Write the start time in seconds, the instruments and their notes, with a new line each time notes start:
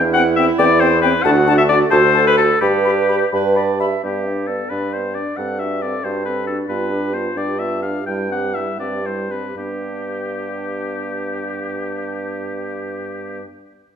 Already playing: bassoon E2, clarinet E4
0.14 french horn C4, oboe F#5, flute G5
0.36 french horn C4, oboe E5, flute G5
0.58 bassoon E2, french horn C4, oboe D5, flute G5
0.80 french horn C4, oboe C5, flute G5
1.01 french horn C4, oboe B4, flute G5
1.23 bassoon D2, french horn D4, clarinet F#4, oboe F#5, flute A5
1.47 french horn D4, flute A5
1.58 oboe E5
1.69 french horn D4, oboe D5, flute A5
1.91 bassoon D2, french horn F#4, clarinet A4, oboe C5, flute A5
2.14 french horn F#4, flute A5
2.27 oboe B4
2.37 french horn F#4, oboe A4, flute A5
2.60 bassoon G2, oboe G4, french horn G4, clarinet B4, flute B5
2.85 french horn G4, flute B5
3.09 french horn G4, flute B5
3.32 bassoon G2, french horn G4, clarinet B4, flute B5
3.56 french horn G4, clarinet D5, flute B5
3.80 french horn G4, clarinet E5, flute B5
4.03 bassoon G2, french horn B3, oboe G4, clarinet B4
4.26 french horn D4, clarinet D5
4.47 french horn B3, oboe A4, clarinet B4
4.70 bassoon G2, french horn D4, oboe B4, clarinet D5
4.93 french horn B3, clarinet B4, oboe C5
5.14 french horn D4, oboe D5, clarinet D5
5.37 bassoon G2, french horn C4, clarinet A4, oboe F#5
5.59 french horn D4, clarinet F#4, oboe E5
5.82 french horn C4, clarinet A4, oboe D5
6.03 bassoon G2, french horn D4, clarinet F#4, oboe C5
6.25 french horn C4, clarinet A4, oboe B4
6.47 french horn D4, clarinet F#4, oboe A4
6.69 bassoon G2, french horn B3, clarinet F4, oboe B4
6.91 french horn D4, clarinet G4
7.13 french horn B3, clarinet F4, oboe C5
7.36 bassoon G2, french horn D4, clarinet G4, oboe D5
7.59 french horn B3, clarinet F4, oboe E5
7.82 french horn D4, clarinet G4, oboe F5
8.05 bassoon G2, french horn G3, clarinet E4, oboe G5
8.30 french horn C4, clarinet G4, oboe F#5
8.54 french horn G3, clarinet E4, oboe E5
8.79 bassoon G2, french horn C4, clarinet G4, oboe D5
9.04 french horn G3, clarinet E4, oboe C5
9.30 french horn C4, clarinet G4, oboe B4
9.56 bassoon G2, french horn B3, clarinet D4, oboe G4